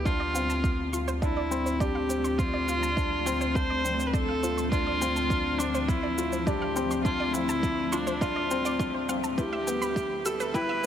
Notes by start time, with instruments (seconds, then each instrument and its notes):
0.05 detuned saw bass D2, ambient pad F3 A3 D4 C5 D5, felt piano D4, viola F4, synth arpeggio sound C5, kick, shaker
0.20 synth arpeggio sound D5
0.34 felt piano C4, synth arpeggio sound F5, shaker
0.49 synth arpeggio sound A5, shaker
0.64 kick, shaker
0.93 felt piano F4, synth arpeggio sound C6, shaker
1.08 synth arpeggio sound C5, shaker
1.22 felt piano D4, viola E4, synth arpeggio sound F5, kick, shaker
1.37 synth arpeggio sound D5
1.51 felt piano C4, shaker
1.66 synth arpeggio sound C5, shaker
1.80 felt piano D4, viola G4, synth arpeggio sound D5, kick, shaker
1.95 synth arpeggio sound F5
2.09 felt piano C4, synth arpeggio sound C5, shaker
2.24 synth arpeggio sound C6, shaker
2.39 viola F4, synth arpeggio sound C5, kick, shaker
2.54 synth arpeggio sound D5
2.67 felt piano F4, synth arpeggio sound F5, shaker
2.83 synth arpeggio sound A5, shaker
2.97 felt piano D4, kick, shaker
3.26 felt piano C4, synth arpeggio sound C6, shaker
3.41 synth arpeggio sound C5, shaker
3.55 felt piano D4, viola C5, synth arpeggio sound F5, kick, shaker
3.70 synth arpeggio sound D5
3.85 felt piano C4, shaker
3.99 synth arpeggio sound C5, shaker
4.07 viola B4
4.13 viola A4, synth arpeggio sound D5, kick, shaker
4.29 synth arpeggio sound F5
4.43 felt piano F4, synth arpeggio sound C5, shaker
4.58 synth arpeggio sound C6, shaker
4.71 felt piano D4, viola F4, synth arpeggio sound C5, ambient pad E5, kick, shaker
4.87 synth arpeggio sound D5
5.01 felt piano C4, synth arpeggio sound F5, shaker
5.16 synth arpeggio sound A5, shaker
5.30 felt piano D4, kick, shaker
5.59 felt piano C4, viola D4, synth arpeggio sound C6, shaker
5.75 synth arpeggio sound C5, shaker
5.88 viola E4, synth arpeggio sound F5, kick, shaker
6.03 synth arpeggio sound D5
6.18 felt piano F4, shaker
6.33 synth arpeggio sound C5, shaker
6.46 felt piano D4, viola G4, synth arpeggio sound D5, kick, shaker
6.62 synth arpeggio sound F5
6.76 felt piano C4, synth arpeggio sound C5, shaker
6.91 synth arpeggio sound C6, shaker
7.04 felt piano D4, viola F4, synth arpeggio sound C5, kick, shaker
7.20 synth arpeggio sound D5
7.33 felt piano C4, viola E4, synth arpeggio sound F5, shaker
7.49 synth arpeggio sound A5, shaker
7.63 kick, shaker
7.92 viola D4, felt piano F4, synth arpeggio sound C6, shaker
8.07 synth arpeggio sound C5, shaker
8.21 felt piano D4, viola F4, synth arpeggio sound F5, kick, shaker
8.36 synth arpeggio sound D5
8.51 felt piano C4, shaker
8.65 synth arpeggio sound D5, shaker
8.79 felt piano D4, synth arpeggio sound C6, kick, shaker
8.94 synth arpeggio sound C5
9.09 felt piano C4, synth arpeggio sound F5, shaker
9.24 synth arpeggio sound A5, shaker
9.38 detuned saw bass D2, ambient pad G3 E4 B4, felt piano E4, viola G4, synth arpeggio sound B4, kick, shaker
9.53 synth arpeggio sound E5
9.67 felt piano B3, synth arpeggio sound G5, shaker
9.82 synth arpeggio sound B5, shaker
9.96 kick, shaker
10.25 felt piano G4, viola A4, synth arpeggio sound E6, shaker
10.40 synth arpeggio sound B4, shaker
10.54 felt piano E4, viola B4, synth arpeggio sound G5, kick, shaker
10.69 synth arpeggio sound E5